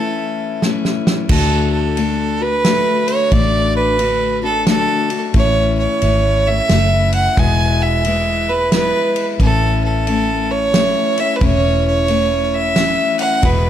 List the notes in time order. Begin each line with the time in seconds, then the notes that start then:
Already playing: E3 A3 C#4 E4 A4
0.62 E3 A3 C#4 E4, snare
0.85 snare
1.07 snare
1.29 D2 D3 A3 D4 F#4 A4, kick, crash
1.73 A4
1.97 D3 A3 D4 F#4, ride
2.40 A3 D4 F#4 B4
2.65 D3 A3 D4 F#4, snare, ride
3.08 C#5, ride
3.27 C#5
3.31 A1 D3 A3 D4 F#4 D5, kick, ride
3.76 B4
3.98 D3 A3 D4 F#4, ride
4.42 A3 D4 F#4 A4
4.67 D3 A3 D4 F#4 A4, snare, ride
5.10 A3 D4 F#4, ride
5.34 A1 A2 E3 A3 C#4 E4 C#5, kick, ride
5.79 C#5
6.02 G#1 E3 A3 C#4 E4, ride
6.47 A3 C#4 E4 E5
6.69 F#1 E3 A3 C#4 E4, snare, ride
7.12 F#5, ride
7.37 E1 E2 B2 E3 G#3 B3 E4 G#5, kick, ride
7.83 E5
8.05 E3 G#3 B3 E4, ride
8.49 E3 G#3 B3 E4 B4
8.72 E3 G#3 B3 E4 B4, snare, ride
9.16 ride
9.40 A1 A2 E3 A3 C#4 E4 A4, kick, ride
9.85 A4
10.07 E3 A3 C#4 E4, ride
10.51 C#5
10.74 E3 A3 C#4 E4, snare, ride
11.18 A3 C#4 E4 E5, ride
11.36 B4
11.40 E1 A2 E3 A3 C#4 E4 C#5, kick, ride
11.88 C#5
12.08 E3 A3 C#4 E4, ride
12.44 C#5
12.55 E5
12.76 E3 A3 C#4 E4, snare, ride
13.19 F#5, ride
13.42 E1 E2 B2 E3 G#3 B3 E4 B4, kick, ride